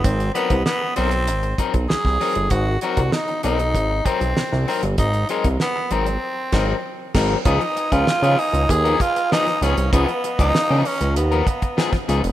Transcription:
<<
  \new Staff \with { instrumentName = "String section" } { \time 4/4 \key des \major \tempo 4 = 97 << { r1 | r1 | r1 | aes''1 |
bes''1 | } \\ { r1 | r1 | r1 | <ces'' ees'' f''>1~ |
<ces'' ees'' f''>1 | } >> }
  \new Staff \with { instrumentName = "Tenor saxophone" } { \time 4/4 \key des \major c'8 ces'8 ces'8 c'4 r8 aes'4 | ges'8 ges'8 ees'8 ees'4 c'4 c'8 | ees'8 aes8 ces'8 c'2 r8 | ees'8. f'8. ees'8 aes'8 f'8 ees'8 des'8 |
ces'8. ees'8. des'8 ces'4. r8 | }
  \new Staff \with { instrumentName = "Clean electric guitar" } { \time 4/4 \key des \major r8 <ges c' ees' bes'>16 r8. <ges c' ees' bes'>16 r8. <ges c' ees' bes'>16 r8. <ges c' ees' bes'>16 r16 | r8 <ges c' ees' bes'>16 r8. <ges c' ees' bes'>16 r8. <ges c' ees' bes'>16 r8. <ges c' ees' bes'>16 r16 | r8 <ges c' ees' bes'>16 r8. <ges c' ees' bes'>16 r8. <ges c' ees' bes'>8 r8 <ges c' ees' bes'>8 | <f ces' ees' aes'>16 r8 <f ces' ees' aes'>16 r16 <f ces' ees' aes'>16 r8. <f ces' ees' bes'>16 r8 <f ces' ees' aes'>16 r16 <f ces' ees' aes'>16 r16 |
<f ces' ees' aes'>16 r8 <f ces' ees' aes'>16 r16 <f ces' ees' aes'>16 r8. <f ces' ees' bes'>16 r8 <f ces' ees' aes'>16 r16 <f ces' ees' aes'>16 r16 | }
  \new Staff \with { instrumentName = "Analog synth bass" } { \clef bass \time 4/4 \key des \major aes,,8 r16 c,16 r8 ces,8 aes,,8 r16 ces,16 c,16 c,16 r16 g,,16 | aes,,8 r16 c,16 r8 ces,8 aes,,8 r16 ces,16 c,16 c,16 r16 g,,16 | aes,,8 r16 c,16 r8 aes,,8 r8 aes,,8 r8 aes,,8 | des,16 r8 des,16 des16 des16 r16 des,16 ees,8 r4 des,16 c,16 |
des,16 r8 des,16 des16 des16 r16 des,16 ees,8 r4 des,16 f,,16 | }
  \new DrumStaff \with { instrumentName = "Drums" } \drummode { \time 4/4 <hh bd>16 hh16 hh16 <hh bd>16 sn8 hh16 hh16 hh16 hh16 <hh bd>16 <hh bd>16 sn16 <bd sn>16 <hho sn>16 hh16 | <hh bd>8 hh16 <hh bd>16 sn16 hh16 hh16 hh16 <hh bd>8 <hh bd>16 hh16 sn16 sn16 <hho sn>16 hh16 | <hh bd>16 hh16 hh16 <hh bd>16 sn8 hh16 hh16 r8 <cymc bd sn>8 r8 <cymc bd sn>8 | <hh bd>16 hh16 hh16 <hh bd>16 sn16 hh16 hho16 hh16 <hh bd>16 hh16 <hh bd>16 hh16 sn16 <hh sn>16 <hh sn>16 hh16 |
<hh bd>16 hh16 hh16 <hh bd>16 sn8 hho16 hh16 hh16 hh16 <hh bd>16 <hh bd>16 sn16 <hh bd sn>16 <hh sn>16 hh16 | }
>>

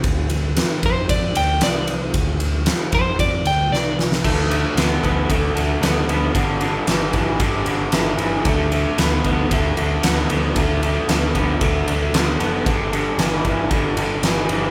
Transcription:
<<
  \new Staff \with { instrumentName = "Lead electric guitar" } { \time 4/4 \key d \minor \tempo 4 = 114 r4. c''8 d''8 g''8 d''8 r8 | r4. c''8 d''8 g''8 d''8 r8 | r1 | r1 |
r1 | r1 | r1 | }
  \new Staff \with { instrumentName = "Overdriven electric guitar" } { \clef bass \time 4/4 \key d \minor r1 | r1 | <d a>8 <d a>8 <d b>8 <d b>8 <d a>8 <d a>8 <d b>8 <d b>8 | <g, d>8 <g, d>8 <g, e>8 <g, e>8 <g, d>8 <g, d>8 <g, e>8 <g, e>8 |
<d a>8 <d a>8 <d b>8 <d b>8 <d a>8 <d a>8 <d b>8 <d b>8 | <d a>8 <d a>8 <d b>8 <d b>8 <d a>8 <d a>8 <d b>8 <d b>8 | <g, d>8 <g, d>8 <g, e>8 <g, e>8 <g, d>8 <g, d>8 <g, e>8 <g, e>8 | }
  \new Staff \with { instrumentName = "Picked electric bass" } { \clef bass \time 4/4 \key d \minor d,8 d,8 r8 f,8 f,8 d,8 c,4 | d,8 d,8 r8 f,8 f,8 d,8 c,4 | d,4 d,8 d,8 d,8 d,8 d,8 d,8 | g,,4 g,,8 g,,8 g,,8 g,,8 g,,8 g,,8 |
d,4 d,8 d,8 d,8 d,8 d,8 d,8 | d,4 d,8 d,8 d,8 d,8 d,8 fis,,8 | g,,4 g,,8 g,,8 g,,8 g,,8 g,,8 g,,8 | }
  \new DrumStaff \with { instrumentName = "Drums" } \drummode { \time 4/4 <bd cymr>8 cymr8 <cymr sn>8 <bd cymr>8 <bd cymr>8 cymr8 <cymr sn>8 cymr8 | <bd cymr>8 cymr8 <cymr sn>8 <bd cymr>8 <bd cymr>8 cymr8 sn8 sn16 sn16 | <cymc bd>8 cymr8 <cymr sn>8 <bd cymr>8 <bd cymr>8 cymr8 <cymr sn>8 cymr8 | <bd cymr>8 cymr8 <cymr sn>8 <bd cymr sn>8 <bd cymr>8 cymr8 <cymr sn>8 cymr8 |
<bd cymr>8 cymr8 <cymr sn>8 <bd cymr>8 <bd cymr>8 cymr8 <cymr sn>8 cymr8 | <bd cymr>8 cymr8 <cymr sn>8 <bd cymr>8 <bd cymr>8 cymr8 <cymr sn>8 cymr8 | <bd cymr>8 cymr8 <cymr sn>8 <bd cymr>8 <bd cymr>8 cymr8 <cymr sn>8 cymr8 | }
>>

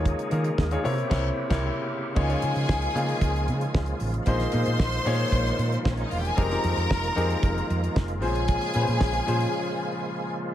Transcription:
<<
  \new Staff \with { instrumentName = "String section" } { \time 4/4 \key bes \dorian \tempo 4 = 114 r1 | <aes' aes''>2.~ <aes' aes''>8 r8 | <c'' c'''>2. \tuplet 3/2 { <c' c''>16 <des' des''>16 <ees' ees''>16 <f' f''>16 <g' g''>16 <aes' aes''>16 } | <bes' bes''>2. r8 <aes' aes''>8~ |
<aes' aes''>2.~ <aes' aes''>8 r8 | }
  \new Staff \with { instrumentName = "Grand piano" } { \time 4/4 \key bes \dorian <ees bes f' aes' des''>16 r16 <ees bes f' aes' bes'>8. <ees bes f' aes' des''>16 <c c' e' bes' des''>8 <c c' e' bes' des''>8 r16 <c c' e' bes' des''>8 r8. | <des bes ees' f' des''>16 <des bes ees' f' des''>4 r16 <des bes ees' f' aes'>4.~ <des bes ees' f' aes'>16 r8. | <bes, bes ees' aes' c''>8 <bes, bes ees' aes' c''>8. r16 <bes, bes ees' aes' des''>4.~ <bes, bes ees' aes' des''>16 r8. | <f c' ees' g' aes' bes'>16 <f c' ees' g' aes' bes'>4 r16 <f c' ees' g' aes' bes'>4.~ <f c' ees' g' aes' bes'>16 r16 <bes, f c' des' aes' c''>8~ |
<bes, f c' des' aes' c''>16 r16 <bes, f des' aes' b' c''>8. r16 <bes, f des' aes' c''>4.~ <bes, f des' aes' c''>16 r8. | }
  \new Staff \with { instrumentName = "Tonewheel organ" } { \time 4/4 \key bes \dorian <ees' aes'>4. <e' g'>2~ <e' g'>8 | <bes f'>1~ | <bes f'>1~ | <bes f'>1~ |
<bes f'>1 | }
  \new Staff \with { instrumentName = "Tonewheel organ" } { \clef bass \time 4/4 \key bes \dorian << { <aes bes>4. c'2~ c'8 | <f aes>1~ | <f aes>1 | <f aes>2.~ <f aes>8 <f aes>8~ |
<f aes>1 | } \\ { des4. des2~ des8 | des1 | ees1~ | ees2.~ ees8 des8~ |
des1 | } >> }
  \new Staff \with { instrumentName = "Fingered electric bass" } { \clef bass \time 4/4 \key bes \dorian ees,8 ees8 ees,8 c8 c,8 r16 c,8 r8. | des,8 des16 des16 des,8 des8 des,8 des8 des,8 a,,8 | bes,,8 bes,16 bes,16 bes,,8 bes,8 bes,,8 bes,8 bes,,8 e,,8 | f,,8 f,16 f,16 f,,8 f,8 f,,8 f,8 f,,8 bes,,8~ |
bes,,8 bes,16 bes,16 bes,,8 bes,8 r2 | }
  \new DrumStaff \with { instrumentName = "Drums" } \drummode { \time 4/4 <hh bd>16 hh16 hh16 hh16 <bd sn>16 hh16 hho16 hh16 <cymc bd sn>8. <cymc bd sn>16 r4 | <cymc bd>16 hh16 hh16 hh16 <bd sn>16 hh16 hh16 hh16 <hh bd>16 hh16 hh16 hh16 <bd sn>16 hh16 hho16 hh16 | <hh bd>16 <hh sn>16 hh16 hh16 <bd sn>16 hh16 hh16 hh16 <hh bd>16 hh16 hh16 hh16 <bd sn>16 hh16 hho16 hh16 | <hh bd>16 <hh sn>16 hh16 hh16 <bd sn>16 hh16 hh16 hh16 <hh bd>16 hh16 hh16 hh16 <bd sn>16 hh16 hho16 hh16 |
<hh bd>16 <hh sn>16 hh16 hh16 <bd sn>16 hh16 hh16 hh16 r4 r4 | }
>>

